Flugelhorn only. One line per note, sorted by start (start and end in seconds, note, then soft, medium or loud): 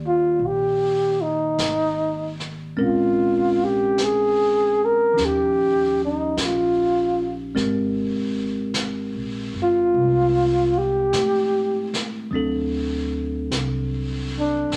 0.07 0.48 F4 medium
0.46 1.23 G4 medium
1.22 2.40 D#4 medium
2.84 3.65 F4 medium
3.64 4.06 G4 medium
4.04 4.86 G#4 medium
4.85 5.27 A#4 medium
5.25 6.01 G4 medium
6.05 6.38 D#4 medium
6.44 7.36 F4 medium
9.62 10.79 F4 medium
10.78 11.95 G4 medium
14.40 14.77 D4 medium